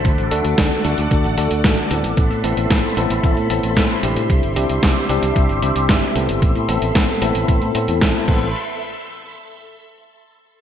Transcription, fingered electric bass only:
X:1
M:4/4
L:1/16
Q:1/4=113
K:Ador
V:1 name="Fingered electric bass" clef=bass
D,, A,,, D,, D,, D,, z D,, D,, D,, A,,, D,, D,, A,,, z D,, A,,, | A,,, A,, A,,, A,,, A,,, z A,,, A,,, A,,, A,, A,,, A,,, A,, z A,,, A,, | C,, G,,, C,, C,, C,, z C,, C,, C,, G,,, C,, C,, G,,, z C,, G,,, | A,,, A,, A,,, A,,, A,,, z A,,, A,,, A,,, A,, A,, E,, A,,, z A,,,2 |
z16 |]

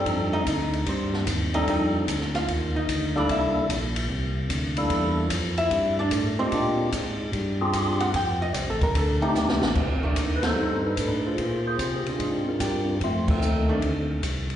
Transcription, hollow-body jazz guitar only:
X:1
M:4/4
L:1/8
Q:"Swing" 1/4=148
K:Fmix
V:1 name="Hollow-body jazz guitar"
[Cc] [Ee] [Ee] z [Cc]3 [Ee] | [Ee] z2 [Ff]2 [Ee]2 [Dd] | [=E=e]2 z6 | z3 [=E=e]2 [Dd]2 [Cc] |
[Dd]2 z4 z _g | g e (3c A B A E z2 | z [E,A,D]3 z4 | z6 [DG]2 |
z3 [E,A,D] z4 |]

